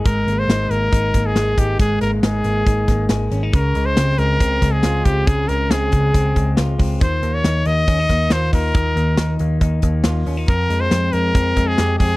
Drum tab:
HH |xxxxxxxx|xxxxxxxx|xxxxxxxx|xxxxxxxo|
SD |--o--oo-|--o--oo-|--o--oo-|--o---o-|
BD |o---oo-o|o---oo--|o---oo-o|o--ooo-o|

HH |xxxxxxxo|xxxxxxxo|xxxxxxxo|
SD |--o--oo-|--o---o-|--o---o-|
BD |o---oo-o|o---oo--|o---oo-o|